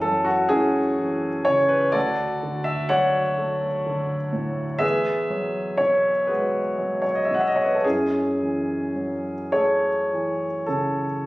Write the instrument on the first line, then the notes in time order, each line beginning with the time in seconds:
grand piano
Already playing: F#2 E3 B4
0.01 F#3 A4
0.25 F#4
0.49 A3 C#4 E4 G#4
0.99 E3
1.45 C#3 C#5
1.69 B4
1.92 D2 F#4 A4 D5
2.43 D3
2.64 E5
2.89 F#3 C#5 D5 F#5
3.38 A3
3.86 D3
4.33 A2
4.79 E2 G#4 B4 E5
5.30 F#3
5.78 B2 C#5
6.27 G#3 F#4 G#4 B4
6.79 F#3
7.02 C#5
7.15 D#5
7.25 E5
7.31 B2 F#5
7.41 E5
7.48 D#5
7.56 C#5
7.65 B4
7.75 A4
7.84 F#2 C#4 E4 G#4
8.41 E3
8.95 F#3
9.52 A3 G#4 A4 C#5
10.13 E3
10.66 C#3 A4